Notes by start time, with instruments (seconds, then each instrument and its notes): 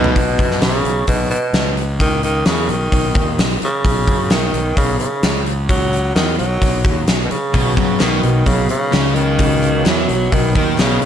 Already playing: overdriven electric guitar B2 F#3 B3 D#4, distorted electric guitar B2 F#3 B3 D#4, tenor saxophone B2, steel-string acoustic guitar F#3 B3 D#4 B4
0.04 floor tom
0.16 fingered electric bass B1, kick, open hi-hat
0.39 fingered electric bass F#2, kick, open hi-hat
0.51 snare
0.62 fingered electric bass B1, tenor saxophone C#3, snare, open hi-hat
0.85 fingered electric bass B1, open hi-hat
1.07 fingered electric bass B1, tenor saxophone B2, kick, open hi-hat
1.30 tenor saxophone B2, open hi-hat
1.53 fingered electric bass C#2, snare, open hi-hat
1.77 open hi-hat
2.00 tenor saxophone D#3, kick, open hi-hat
2.23 tenor saxophone D#3, open hi-hat
2.46 fingered electric bass E2, tenor saxophone C#3, snare, open hi-hat
2.68 fingered electric bass B1, tenor saxophone D#3, open hi-hat
2.92 fingered electric bass B1, kick, open hi-hat
3.15 fingered electric bass D#2, kick, open hi-hat
3.38 fingered electric bass B1, snare, open hi-hat
3.62 tenor saxophone C#3, muted fingered electric bass stroke, open hi-hat
3.84 fingered electric bass B1, kick, open hi-hat
4.07 fingered electric bass F#2, kick, open hi-hat
4.30 fingered electric bass B1, tenor saxophone D#3, snare, open hi-hat
4.53 fingered electric bass B1, open hi-hat
4.77 fingered electric bass B1, tenor saxophone C#3, kick, open hi-hat
4.99 tenor saxophone C#3, open hi-hat
5.23 fingered electric bass C#2, snare, open hi-hat
5.46 open hi-hat
5.69 tenor saxophone F#3, kick, open hi-hat
5.93 open hi-hat
6.15 fingered electric bass E2, tenor saxophone D#3, snare, open hi-hat
6.39 fingered electric bass B1, tenor saxophone F#3, open hi-hat
6.62 fingered electric bass B1, kick, open hi-hat
6.85 fingered electric bass D#2, kick, open hi-hat
7.08 fingered electric bass B1, snare, open hi-hat
7.25 tenor saxophone B2
7.31 tenor saxophone C#3, muted fingered electric bass stroke, open hi-hat
7.53 fingered electric bass B1, steel-string acoustic guitar B2 D#3 F#3 B3 D#4 B4, distorted electric guitar B2, kick, open hi-hat
7.77 fingered electric bass F#2, tenor saxophone C#3, distorted electric guitar F#3, kick, open hi-hat
8.00 fingered electric bass B1, steel-string acoustic guitar B2 D#3 F#3 B3 D#4 B4, distorted electric guitar B2, tenor saxophone D#3, snare, clap, open hi-hat
8.23 fingered electric bass B1, distorted electric guitar B2, steel-string acoustic guitar F#3 B3 D#4 B4, open hi-hat
8.46 fingered electric bass B1, distorted electric guitar B2, tenor saxophone C#3, steel-string acoustic guitar F#3 B3 D#4 B4, kick, open hi-hat
8.69 tenor saxophone C#3, steel-string acoustic guitar F#3 B3 D#4 B4, open hi-hat
8.92 fingered electric bass C#2, distorted electric guitar C#3, snare, clap, open hi-hat
9.15 tenor saxophone D#3, steel-string acoustic guitar F#3 B3 D#4 B4, open hi-hat
9.39 steel-string acoustic guitar B2 D#3 F#3 B3 D#4 B4, kick, open hi-hat
9.63 open hi-hat
9.84 fingered electric bass E2, steel-string acoustic guitar B2 D#3 F#3 B3 D#4 B4, distorted electric guitar E3, tenor saxophone F#3, snare, clap, open hi-hat
10.08 fingered electric bass B1, distorted electric guitar B2, steel-string acoustic guitar F#3 B3 D#4 B4, open hi-hat
10.32 fingered electric bass B1, distorted electric guitar B2, tenor saxophone D#3, steel-string acoustic guitar F#3 B3 D#4 B4, kick, open hi-hat
10.55 fingered electric bass D#2, distorted electric guitar D#3, tenor saxophone D#3, steel-string acoustic guitar F#3 B3 D#4 B4, kick, open hi-hat
10.78 fingered electric bass B1, distorted electric guitar B2, tenor saxophone C#3, snare, clap, open hi-hat
11.01 steel-string acoustic guitar D#4 B4, muted distorted electric guitar stroke, muted overdriven electric guitar stroke, open hi-hat